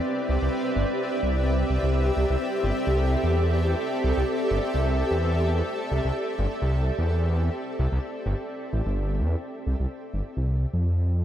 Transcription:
Already playing: ambient pad C4 G4 B4 D5 E5
0.29 detuned saw bass C2
0.42 detuned saw bass C2
0.76 detuned saw bass G1
1.23 detuned saw bass C2
1.70 detuned saw bass C2
1.83 detuned saw bass C2
1.93 ambient pad A4
2.17 detuned saw bass C2
2.30 detuned saw bass C2
2.64 detuned saw bass G1
2.87 detuned saw bass C2
3.24 detuned saw bass E2
4.04 detuned saw bass C2
4.17 detuned saw bass C2
4.51 detuned saw bass G1
4.74 detuned saw bass C2
5.11 detuned saw bass E2
5.92 detuned saw bass C2
6.05 detuned saw bass C2
6.39 detuned saw bass G1
6.62 detuned saw bass C2
6.99 detuned saw bass E2
7.79 detuned saw bass C2
7.92 detuned saw bass C2
8.26 detuned saw bass G1
8.73 detuned saw bass A1
8.86 detuned saw bass G1
9.20 detuned saw bass E2
9.67 detuned saw bass C2
9.80 detuned saw bass C2
10.14 detuned saw bass G1
10.37 detuned saw bass C2
10.73 detuned saw bass F2

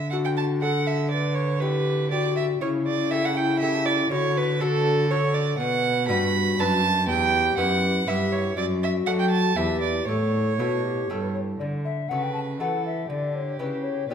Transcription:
Already playing: cello D3, lute D3
0.10 lute D4 F#4 A4, recorder F#4, violin F#5
0.25 violin G5
0.37 violin A5
0.62 lute D4 F#4 A4, recorder A4, violin F#5
0.87 violin E5
1.11 recorder B4, violin D5
1.34 violin C#5
1.60 lute E4 G4, recorder G4, violin B4
2.11 lute E4 G4, recorder F#4, violin D5
2.36 violin E5
2.61 cello C#3, lute C#3, recorder E4, violin C#5
2.87 violin D5
3.11 lute E4 G4 A4, violin E5
3.25 violin F#5
3.36 violin G5
3.60 lute E4 G4 A4, violin E5
3.85 violin D5
4.10 cello D3, lute D3, recorder F#4, violin C#5
4.37 violin B4
4.60 lute D4 F#4 A4, recorder F#4, violin A4
5.09 lute D4 F#4 A4, recorder A4, violin C#5
5.34 violin D5
5.58 cello B2, lute B2, recorder B4, violin F#5
6.07 lute G2 D4 F#4 B4, cello G2, recorder F#4, violin B5
6.59 cello F#2, lute F#2 D4 F#4 B4, violin A5
7.07 cello E2, lute E2, recorder G4, violin G5
7.57 cello F#2, lute F#2 B3 E4 B4, violin F#5
8.06 lute G2 B3 E4 B4, cello G2, recorder G4, violin E5
8.32 violin C#5
8.56 cello F#2, lute F#2, recorder F#4, violin D5
8.83 violin E5
9.06 lute F#3 A3 A4 D5, cello F#3, violin F#5
9.19 violin G5
9.30 violin A5
9.56 cello E2, lute E2 E4 B4, recorder G4, violin E5
9.81 violin D5
10.07 cello A2, lute A2, recorder A4, violin C#5
10.59 cello B2, lute B2 A3 E4 A4, recorder F#4
10.83 recorder G4
11.10 cello G2, lute G2 A3 E4 A4, recorder A4
11.22 recorder B4
11.34 recorder C#5
11.59 cello D3, lute D3, recorder D5
11.85 recorder E5
12.09 cello C#3, lute C#3 A3 F#4 A4, violin B4, recorder F#5
12.23 recorder G5
12.34 recorder A5
12.60 cello E3, lute E3 A3 F#4 A4, violin A4, recorder F#5
12.86 recorder E5
13.08 cello D3, lute D3, violin G4, recorder D5
13.35 recorder C#5
13.59 lute C#3 B3 E4 G4, cello C#3, recorder B4
13.84 recorder C#5
14.09 cello B2, lute B2 B3 E4 G4, violin B4, recorder D5

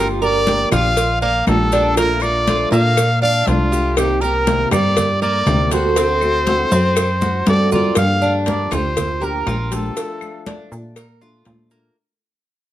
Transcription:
Already playing: analog synth bass G1, steel-string acoustic guitar D3 F3 A#3 D4, cuban tres F4
0.00 steel-string acoustic guitar G4
0.22 steel-string acoustic guitar A#3 D4 G4, cuban tres A#4, nylon-string guitar A#4, trumpet D5, high conga, maracas
0.47 steel-string acoustic guitar D3 F3 A#3 D4 G4, cowbell, high conga, maracas
0.71 analog synth bass A#1, steel-string acoustic guitar A#3 D4 G4, cuban tres F4, nylon-string guitar D5, trumpet F5, cowbell, high conga, low conga, claves, maracas
0.97 muted steel-string acoustic guitar stroke, cowbell, high conga, maracas
1.22 cuban tres A#3, nylon-string guitar D5, trumpet F5, high conga, maracas
1.47 analog synth bass A#1, steel-string acoustic guitar D3 F3 A#3 D4 G4, nylon-string guitar F4, trumpet A4, cowbell, high conga, claves, maracas
1.72 steel-string acoustic guitar A#3 D4 G4, cuban tres D4, cowbell, maracas
1.95 steel-string acoustic guitar F3 A3 D4, cuban tres A#3, nylon-string guitar F4, trumpet A#4, cowbell, high conga, maracas
2.00 steel-string acoustic guitar F4
2.20 steel-string acoustic guitar D4 F4, nylon-string guitar A#4, trumpet D5, high conga, claves, maracas
2.24 steel-string acoustic guitar A3
2.47 steel-string acoustic guitar F3 A3 D4 F4, cuban tres F4, cowbell, high conga, maracas
2.71 analog synth bass A#2, steel-string acoustic guitar A3 D4 F4, cuban tres A#3, nylon-string guitar D5, trumpet F5, maracas
2.97 muted steel-string acoustic guitar stroke, cowbell, high conga, claves, maracas
3.21 cuban tres D4, nylon-string guitar D5, trumpet F5, high conga, maracas
3.46 analog synth bass C2, steel-string acoustic guitar F3 A3 D4 F4, nylon-string guitar D4, trumpet F4, cowbell, high conga, maracas
3.72 steel-string acoustic guitar A3 D4 F4, cuban tres G4, maracas
3.96 steel-string acoustic guitar C3 D#3 A#3 C4 G4, nylon-string guitar D#4, trumpet G4, cowbell, high conga, claves, maracas
4.21 steel-string acoustic guitar A#3 C4 G4, nylon-string guitar G4, trumpet A#4, cuban tres A#4, high conga, maracas
4.46 steel-string acoustic guitar C3 D#3 A#3 C4 G4, cowbell, high conga, maracas
4.71 analog synth bass G2, steel-string acoustic guitar A#3 C4 G4, cuban tres G4, nylon-string guitar A#4, trumpet D5, cowbell, high conga, low conga, claves, maracas
4.97 muted steel-string acoustic guitar stroke, cowbell, high conga, low conga, maracas
5.22 cuban tres A#3, nylon-string guitar A#4, trumpet D5, high conga, maracas
5.46 analog synth bass D2, steel-string acoustic guitar C3 D#3 A#3 C4 G4, cowbell, high conga, claves, maracas
5.71 steel-string acoustic guitar A#3 C4 G4, cuban tres F#4, nylon-string guitar A4, trumpet C5, cowbell, maracas
5.96 steel-string acoustic guitar D3 A3 C4 F#4, cuban tres C4, cowbell, high conga, maracas
6.21 steel-string acoustic guitar A3 C4 F#4, high conga, claves, maracas
6.46 steel-string acoustic guitar D3 A3 C4 F#4, cuban tres A4, cowbell, high conga, maracas
6.72 analog synth bass F#2, steel-string acoustic guitar A3 C4 F#4, cuban tres C4, high conga, maracas
6.96 muted steel-string acoustic guitar stroke, cowbell, high conga, claves, maracas
7.21 cuban tres F#4, high conga, maracas
7.46 analog synth bass G2, steel-string acoustic guitar D3 A3 C4 F#4, nylon-string guitar A4, trumpet D5, cowbell, high conga, maracas
7.71 steel-string acoustic guitar A3 C4 F#4, cuban tres F4, nylon-string guitar A#4, trumpet D5, low conga, maracas
7.95 analog synth bass G2, steel-string acoustic guitar D3 F3 A#3 D4 G4, nylon-string guitar D5, trumpet F5, cowbell, claves, maracas
8.22 cuban tres D4, high conga, maracas
8.46 nylon-string guitar A#4, trumpet D5, cowbell, high conga, maracas
8.71 analog synth bass D2, cuban tres F4, nylon-string guitar G4, trumpet C5, cowbell, high conga, low conga, claves, maracas
8.97 muted steel-string acoustic guitar stroke, cowbell, high conga, low conga, maracas
9.21 steel-string acoustic guitar F3 A#3 D4 G4, nylon-string guitar G4, cuban tres A#4, trumpet A#4, high conga, maracas
9.46 analog synth bass A#1, steel-string acoustic guitar F3 A#3 D4 G4, cuban tres F4, cowbell, high conga, claves, maracas
9.71 steel-string acoustic guitar F3 A#3 D4 G4, nylon-string guitar F4, trumpet A4, cowbell, high conga, maracas
9.96 steel-string acoustic guitar F3 A3 D4 F4, cowbell, high conga, maracas
10.21 high conga, claves, maracas
10.46 cuban tres D4, cowbell, high conga, maracas
10.72 analog synth bass A#2, maracas
10.96 cuban tres A#4, muted steel-string acoustic guitar stroke, cowbell, high conga, claves, maracas
11.21 steel-string acoustic guitar A3 D4 F4, cuban tres F4, high conga, maracas
11.45 analog synth bass A#2, steel-string acoustic guitar F3 A3 D4 F4, cowbell, high conga, maracas
11.70 steel-string acoustic guitar A3 D4 F4, cuban tres A#3, maracas

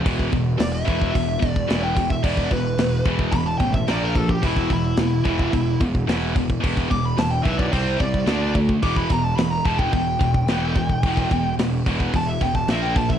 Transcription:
0.04 picked electric bass E1, distorted electric guitar E2 B2 E3, kick, crash
0.19 kick
0.32 picked electric bass E1, distorted electric guitar E2 B2, kick, crash
0.58 picked electric bass E1, distorted electric guitar E2 B2, lead electric guitar D5, snare, crash
0.73 lead electric guitar E5
0.85 picked electric bass E1, distorted electric guitar E2 B2 E3, kick, crash
1.02 kick
1.12 picked electric bass E1, distorted electric guitar E2 B2, kick, crash
1.39 picked electric bass E1, distorted electric guitar E2 B2, kick, crash
1.51 lead electric guitar D5
1.56 kick
1.68 picked electric bass E1, distorted electric guitar E2 B2 E3, snare, crash
1.84 lead electric guitar G5
1.96 distorted electric guitar E2 B2, kick, crash
2.10 lead electric guitar E5, kick
2.23 picked electric bass E1, distorted electric guitar E2 B2 E3, lead electric guitar D5, kick, crash
2.37 kick
2.51 picked electric bass E1, distorted electric guitar E2 B2, lead electric guitar B4, kick, crash
2.78 picked electric bass E1, distorted electric guitar E2 B2, snare, crash
3.05 picked electric bass E1, distorted electric guitar E2 B2 E3, kick, crash
3.19 kick
3.32 picked electric bass E1, distorted electric guitar E2 B2, lead electric guitar B5, kick, crash
3.46 lead electric guitar A5
3.58 picked electric bass A1, distorted electric guitar E2 B2, lead electric guitar G5, kick, crash
3.73 lead electric guitar E5, kick
3.88 picked electric bass A#1, distorted electric guitar A#2 F3 A#3, lead electric guitar D5, snare, crash
4.04 lead electric guitar A#4
4.15 distorted electric guitar A#2 F3, lead electric guitar A4, kick, crash
4.29 lead electric guitar G4, kick
4.43 picked electric bass E1, distorted electric guitar E2 B2 E3, lead electric guitar E4, kick, crash
4.57 kick
4.70 picked electric bass E1, distorted electric guitar E2 B2, lead electric guitar E4, kick, crash
4.97 picked electric bass E1, distorted electric guitar E2 B2, snare, crash
5.24 picked electric bass E1, distorted electric guitar E2 B2 E3, kick, crash
5.39 kick
5.52 picked electric bass E1, distorted electric guitar E2 B2, kick, crash
5.80 picked electric bass E1, distorted electric guitar E2 B2, kick, crash
5.95 kick
6.07 picked electric bass E1, distorted electric guitar E2 B2 E3, snare, crash
6.35 distorted electric guitar E2 B2, kick, crash
6.50 kick
6.60 picked electric bass E1, distorted electric guitar E2 B2 E3, kick, crash
6.77 kick
6.90 picked electric bass E1, distorted electric guitar E2 B2, lead electric guitar D6, kick, crash
7.05 lead electric guitar B5
7.17 picked electric bass E1, distorted electric guitar E2 B2, lead electric guitar A5, snare, crash
7.31 lead electric guitar G5
7.43 picked electric bass B1, distorted electric guitar E2 B2 E3, lead electric guitar E5, kick, crash
7.57 lead electric guitar D5, kick
7.71 picked electric bass C2, distorted electric guitar C3 G3 C4, lead electric guitar C5, kick, crash
8.00 picked electric bass C2, distorted electric guitar C3 G3, lead electric guitar D5, kick, crash
8.14 kick
8.26 picked electric bass D2, distorted electric guitar D3 A3 D4, snare, crash
8.54 distorted electric guitar D3 A3, kick, crash
8.69 kick
8.82 picked electric bass E1, distorted electric guitar E2 B2 E3, lead electric guitar D6, kick, crash
8.96 lead electric guitar B5, kick
9.09 picked electric bass E1, distorted electric guitar E2 B2, lead electric guitar A#5, kick, crash
9.24 lead electric guitar A5
9.36 picked electric bass E1, distorted electric guitar E2 B2, lead electric guitar B5, snare, crash
9.50 lead electric guitar A#5
9.65 picked electric bass E1, distorted electric guitar E2 B2 E3, lead electric guitar A5, kick, crash
9.78 lead electric guitar G5, kick
9.93 picked electric bass E1, distorted electric guitar E2 B2, lead electric guitar G5, kick, crash
10.19 picked electric bass E1, distorted electric guitar E2 B2, kick, crash
10.34 kick
10.47 picked electric bass E1, distorted electric guitar E2 B2 E3, snare, crash
10.75 distorted electric guitar E2 B2, kick, crash
10.89 kick
11.03 picked electric bass E1, distorted electric guitar E2 B2 E3, kick, crash
11.17 kick
11.31 picked electric bass E1, distorted electric guitar E2 B2, kick, crash
11.58 picked electric bass E1, distorted electric guitar E2 B2, snare, crash
11.86 picked electric bass E1, distorted electric guitar E2 B2 E3, kick, crash
12.00 kick
12.13 picked electric bass E1, distorted electric guitar E2 B2, lead electric guitar A5, kick, crash
12.27 lead electric guitar E5
12.41 picked electric bass E1, distorted electric guitar E2 B2, lead electric guitar G5, kick, crash
12.55 lead electric guitar A5, kick
12.67 picked electric bass A#1, distorted electric guitar A#2 F3, lead electric guitar E5, snare, crash
12.71 distorted electric guitar A#3
12.82 lead electric guitar G5
12.96 distorted electric guitar A#2 F3, lead electric guitar A5, kick, crash
13.09 lead electric guitar E5, kick

